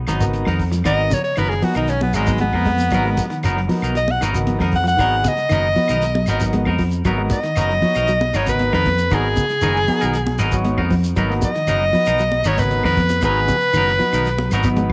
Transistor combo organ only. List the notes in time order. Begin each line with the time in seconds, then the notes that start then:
0.20 B3 D#4 F#4 A#4
0.85 B3 D#4 F#4 A#4
1.62 B3 D#4 F#4 A#4
2.26 B3 D#4 F#4 B4
2.91 B3 D#4 F#4 A#4
3.69 B3 D#4 F#4 A#4
4.34 B3 D#4 F#4 A#4
4.99 B3 D#4 F#4 G#4
5.76 B3 D#4 F#4 B4
6.41 B3 D#4 F#4 A#4
7.06 B3 D#4 F#4 A#4
7.83 B3 D#4 F#4 C#5
8.47 B3 D#4 F#4 A#4
9.11 B3 D#4 F#4 A#4
9.87 B3 D#4 F#4 A#4
10.52 B3 D#4 F#4 C#5
11.16 B3 D#4 F#4 A#4
11.93 B3 D#4 F#4 B4
12.57 B3 D#4 F#4 A#4
13.22 B3 D#4 F#4 G#4
13.99 B3 D#4 F#4 B4
14.63 B3 D#4 F#4 B4